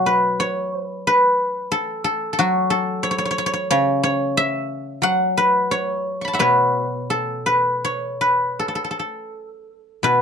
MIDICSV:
0, 0, Header, 1, 2, 480
1, 0, Start_track
1, 0, Tempo, 665188
1, 787, Time_signature, 4, 2, 24, 8
1, 4129, Tempo, 695249
1, 5089, Tempo, 732601
1, 7124, End_track
2, 0, Start_track
2, 0, Title_t, "Guzheng"
2, 0, Program_c, 0, 107
2, 0, Note_on_c, 0, 47, 47
2, 0, Note_on_c, 0, 54, 47
2, 0, Note_on_c, 0, 66, 64
2, 0, Note_on_c, 0, 69, 59
2, 45, Note_on_c, 0, 71, 61
2, 287, Note_on_c, 0, 73, 68
2, 290, Note_off_c, 0, 47, 0
2, 583, Note_off_c, 0, 71, 0
2, 583, Note_off_c, 0, 73, 0
2, 583, Note_on_c, 0, 71, 68
2, 773, Note_off_c, 0, 71, 0
2, 773, Note_on_c, 0, 71, 72
2, 865, Note_off_c, 0, 69, 0
2, 1238, Note_on_c, 0, 69, 70
2, 1256, Note_off_c, 0, 54, 0
2, 1472, Note_off_c, 0, 69, 0
2, 1475, Note_on_c, 0, 69, 69
2, 1539, Note_off_c, 0, 66, 0
2, 1678, Note_off_c, 0, 69, 0
2, 1681, Note_on_c, 0, 69, 52
2, 1722, Note_on_c, 0, 66, 76
2, 1727, Note_on_c, 0, 54, 53
2, 1947, Note_off_c, 0, 69, 0
2, 1950, Note_on_c, 0, 69, 73
2, 2187, Note_on_c, 0, 73, 71
2, 2240, Note_off_c, 0, 73, 0
2, 2243, Note_on_c, 0, 73, 52
2, 2250, Note_off_c, 0, 71, 0
2, 2295, Note_off_c, 0, 73, 0
2, 2298, Note_on_c, 0, 73, 62
2, 2345, Note_off_c, 0, 73, 0
2, 2348, Note_on_c, 0, 73, 51
2, 2383, Note_off_c, 0, 73, 0
2, 2386, Note_on_c, 0, 73, 62
2, 2438, Note_off_c, 0, 73, 0
2, 2441, Note_on_c, 0, 73, 60
2, 2495, Note_off_c, 0, 73, 0
2, 2498, Note_on_c, 0, 73, 69
2, 2548, Note_off_c, 0, 73, 0
2, 2551, Note_on_c, 0, 73, 58
2, 2671, Note_off_c, 0, 73, 0
2, 2674, Note_on_c, 0, 73, 85
2, 2677, Note_on_c, 0, 49, 54
2, 2909, Note_off_c, 0, 73, 0
2, 2911, Note_on_c, 0, 73, 83
2, 3156, Note_on_c, 0, 76, 91
2, 3159, Note_off_c, 0, 54, 0
2, 3477, Note_off_c, 0, 66, 0
2, 3535, Note_off_c, 0, 69, 0
2, 3621, Note_on_c, 0, 54, 52
2, 3631, Note_on_c, 0, 78, 96
2, 3637, Note_off_c, 0, 49, 0
2, 3878, Note_on_c, 0, 71, 73
2, 4119, Note_off_c, 0, 73, 0
2, 4122, Note_on_c, 0, 73, 74
2, 4387, Note_off_c, 0, 76, 0
2, 4468, Note_on_c, 0, 85, 35
2, 4492, Note_on_c, 0, 83, 38
2, 4512, Note_on_c, 0, 81, 42
2, 4549, Note_off_c, 0, 78, 0
2, 4551, Note_on_c, 0, 78, 44
2, 4559, Note_on_c, 0, 76, 49
2, 4589, Note_off_c, 0, 73, 0
2, 4592, Note_on_c, 0, 73, 50
2, 4593, Note_off_c, 0, 71, 0
2, 4596, Note_on_c, 0, 71, 76
2, 4599, Note_on_c, 0, 47, 51
2, 5081, Note_on_c, 0, 69, 66
2, 5082, Note_off_c, 0, 54, 0
2, 5315, Note_off_c, 0, 71, 0
2, 5317, Note_on_c, 0, 71, 68
2, 5324, Note_off_c, 0, 85, 0
2, 5407, Note_off_c, 0, 83, 0
2, 5491, Note_off_c, 0, 81, 0
2, 5567, Note_off_c, 0, 73, 0
2, 5569, Note_on_c, 0, 73, 70
2, 5630, Note_off_c, 0, 78, 0
2, 5714, Note_off_c, 0, 76, 0
2, 5805, Note_off_c, 0, 71, 0
2, 5808, Note_on_c, 0, 71, 59
2, 6058, Note_off_c, 0, 69, 0
2, 6060, Note_off_c, 0, 47, 0
2, 6060, Note_on_c, 0, 69, 54
2, 6115, Note_off_c, 0, 69, 0
2, 6118, Note_on_c, 0, 69, 39
2, 6161, Note_off_c, 0, 69, 0
2, 6164, Note_on_c, 0, 69, 42
2, 6221, Note_off_c, 0, 69, 0
2, 6224, Note_on_c, 0, 69, 36
2, 6262, Note_off_c, 0, 69, 0
2, 6265, Note_on_c, 0, 69, 41
2, 6319, Note_off_c, 0, 69, 0
2, 6322, Note_on_c, 0, 69, 40
2, 6818, Note_off_c, 0, 73, 0
2, 7001, Note_on_c, 0, 47, 45
2, 7005, Note_off_c, 0, 71, 0
2, 7007, Note_on_c, 0, 71, 69
2, 7124, Note_off_c, 0, 47, 0
2, 7124, Note_off_c, 0, 69, 0
2, 7124, Note_off_c, 0, 71, 0
2, 7124, End_track
0, 0, End_of_file